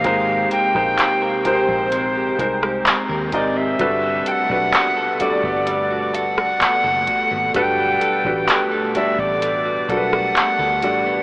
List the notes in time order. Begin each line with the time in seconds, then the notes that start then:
Already playing: C3 C4 G4 A#4 F5
0.04 G#1 G#3 C4 D#4 G4 A#4 C5, kick, closed hi-hat
0.28 G4
0.51 A#4 G5, closed hi-hat
0.75 A#1 G#3 D#4 G4 A#4 C5, kick, cross-stick
0.99 C4, clap, closed hi-hat
1.22 A#4
1.45 G#3 D#4 G4 A#4 C5, muted fingered electric bass stroke, closed hi-hat
1.68 A#1 C4, kick
1.92 G#3, closed hi-hat
2.15 G4
2.39 C2 G#3 D#4 G4 A#4 C5, kick, closed hi-hat
2.62 G4, cross-stick
2.86 C4, clap, closed hi-hat
3.09 D#2 A#4
3.32 G#1 G#3 D#4 G4 A#4 D5 D#5, kick, closed hi-hat
3.56 C4 E5
3.79 G1 B2 G3 A3 D4 F#4 A4 B4, kick, closed hi-hat
4.03 F#4
4.26 A4 G5, closed hi-hat
4.31 F#5
4.50 B1 G3 D4 F#4 A4 B4, kick
4.73 B3, clap, closed hi-hat
4.97 A4
5.20 G3 D4 F#4 A4 D5, muted fingered electric bass stroke, closed hi-hat
5.43 G1 B3, kick
5.67 G3, closed hi-hat
5.90 F#4
6.14 A4 F#5, closed hi-hat
6.37 F#4, cross-stick
6.60 B3, muted fingered electric bass stroke, clap, closed hi-hat
6.84 F#1 A4
7.07 F#4, kick, closed hi-hat
7.31 G#1 B3
7.54 G1 F#3 G3 D4 A4 B4 G5, kick, closed hi-hat
8.01 A4, closed hi-hat
8.25 A1 F#3 G3 D4 A4 B4, kick
8.48 B3, clap, closed hi-hat
8.71 A4
8.95 G3 D4 F#4 A4 D5 E5, muted fingered electric bass stroke, closed hi-hat
9.18 A1 B3 D5, kick
9.42 G3, closed hi-hat
9.65 F#4
9.89 B1 G3 D4 F#4 A4 A#4 F#5, kick, closed hi-hat
9.97 B4
10.12 F#4, cross-stick
10.36 B3, clap, closed hi-hat
10.59 D2 A4
10.82 A1 G3 D4 F#4 A4 D5, closed hi-hat
11.06 B3